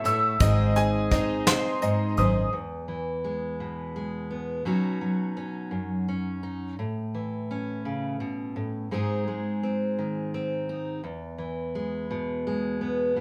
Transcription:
Already playing: steel-string acoustic guitar E4 F#4, upright piano E5 C#6
0.04 steel-string acoustic guitar A2, twelve-string acoustic guitar A4 C#5, upright piano E6, closed hi-hat
0.09 twelve-string acoustic guitar E4
0.40 fingered electric bass G#1, steel-string acoustic guitar G#2, twelve-string acoustic guitar G#3 C4 D#4 G#4 C5, upright piano D#5, kick, closed hi-hat
0.76 steel-string acoustic guitar G#4, upright piano G#5, closed hi-hat
1.11 twelve-string acoustic guitar C4 D#4 G#4 C5, steel-string acoustic guitar D#4, upright piano D#5, kick, closed hi-hat
1.47 twelve-string acoustic guitar G#3 C4 D#4 G#4 C5, upright piano C6, snare, closed hi-hat
1.82 steel-string acoustic guitar G#2, upright piano D#5, closed hi-hat
2.17 fingered electric bass G#1, steel-string acoustic guitar F#2, twelve-string acoustic guitar G#4 C5, upright piano D#6, closed hi-hat
2.22 twelve-string acoustic guitar D#4
2.53 steel-string acoustic guitar E2
2.88 steel-string acoustic guitar E3
3.24 steel-string acoustic guitar G#3
3.60 steel-string acoustic guitar B2
3.96 steel-string acoustic guitar G#3
4.31 steel-string acoustic guitar B3
4.65 steel-string acoustic guitar B2 F#3 C#4 D#4 F#4
5.01 steel-string acoustic guitar F#3
5.37 steel-string acoustic guitar C#4
5.71 steel-string acoustic guitar F#2
6.08 steel-string acoustic guitar C#4
6.43 steel-string acoustic guitar D#4
6.79 steel-string acoustic guitar A2
7.14 steel-string acoustic guitar E3
7.51 steel-string acoustic guitar C#4
7.85 steel-string acoustic guitar C#3
8.20 steel-string acoustic guitar B2
8.56 steel-string acoustic guitar A2
8.91 steel-string acoustic guitar G#2 G#3 C4 D#4 G#4
9.28 steel-string acoustic guitar G#3
9.63 steel-string acoustic guitar C4
9.99 steel-string acoustic guitar D#3
10.34 steel-string acoustic guitar C4
10.69 steel-string acoustic guitar D#4
11.04 steel-string acoustic guitar E2
11.38 steel-string acoustic guitar E3
11.75 steel-string acoustic guitar G#3
12.11 steel-string acoustic guitar B2
12.47 steel-string acoustic guitar G#3
12.81 steel-string acoustic guitar B3
13.16 steel-string acoustic guitar B2

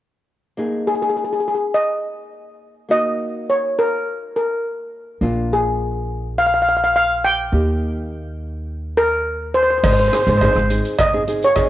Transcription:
0.57 nylon-string guitar A#3 D#4 G#4
0.87 steel pan G#4
0.95 steel pan G#4
1.02 steel pan G#4
1.09 steel pan G#4
1.17 steel pan G#4
1.24 steel pan G#4
1.33 steel pan G#4
1.40 steel pan G#4
1.48 steel pan G#4
1.55 steel pan G#4
1.74 steel pan D#5
2.89 nylon-string guitar A#3 D#4 F#4, steel pan D#5
3.50 steel pan C#5
3.79 steel pan A#4
4.36 steel pan A#4
5.21 upright bass A#1, nylon-string guitar A#3 D4 F4
5.53 steel pan G#4
6.38 steel pan F5
6.46 steel pan F5
6.54 steel pan F5
6.62 steel pan F5
6.69 steel pan F5
6.77 steel pan F5
6.84 steel pan F5
6.96 steel pan F5
7.25 steel pan G5
7.52 upright bass D#2, nylon-string guitar A#3 D#4 G4
8.97 steel pan A#4
9.54 steel pan C5
9.63 steel pan C5
9.70 steel pan C5
9.78 steel pan C5
9.83 upright bass G#1, steel pan C5, kick, crash, cowbell
9.93 steel pan C5
10.00 steel pan C5
10.08 steel pan C5
10.12 nylon-string guitar C4 D#4 G#4, steel pan C5, cross-stick, closed hi-hat
10.22 steel pan C5
10.26 upright bass G#1, nylon-string guitar C4 D#4 G#4, steel pan C5, closed hi-hat
10.37 nylon-string guitar C4, steel pan C5, kick, cowbell
10.42 nylon-string guitar D#4 G#4, steel pan C5, closed hi-hat
10.53 upright bass G#1, steel pan C5, cross-stick
10.69 nylon-string guitar C4 D#4 G#4, closed hi-hat
10.85 closed hi-hat
10.99 steel pan D#5, kick, cross-stick, closed hi-hat, cowbell
11.13 nylon-string guitar C4 D#4 G#4
11.27 nylon-string guitar C4 D#4 G#4, closed hi-hat
11.43 steel pan C#5, closed hi-hat
11.56 nylon-string guitar C4 D#4 G#4, kick, cross-stick, closed hi-hat, cowbell

